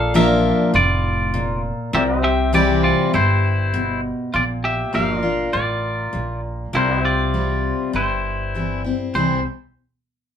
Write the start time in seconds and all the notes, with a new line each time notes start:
Already playing: A#1 A#2 F4 A4 D5 F5
0.14 F3 A#3 D4 F4 A#4 E5
0.74 F1 A2 F4 D5
1.34 A#2
1.93 C2 C3 F4 G4 A#4 D5 E5
2.20 G4 C5 E5
2.24 G4 E5
2.53 E3 G3 C4 E4 G4 D5
2.83 F4 D5
3.14 G1 G2 E4 C5
3.74 B2
4.34 A#1 A#2 F4 D5
4.64 G4 E5
4.93 G1 F3 A#3 D4 F4 G4 A#4 E5 F5
5.19 F4 D5
5.24 D4
5.53 A1 A2 F4 D5
6.13 A#1 A#2
6.73 C2 C3 E4 F4 A#4 C5 D5
7.00 G4 C5 E5
7.05 F4 D5
7.34 G3 C4
7.93 G1 G2 E4 C5
8.54 E3 G3 C4 E4
8.84 C4 E4
9.14 C2 C3 E3 G3 C4 E4 C5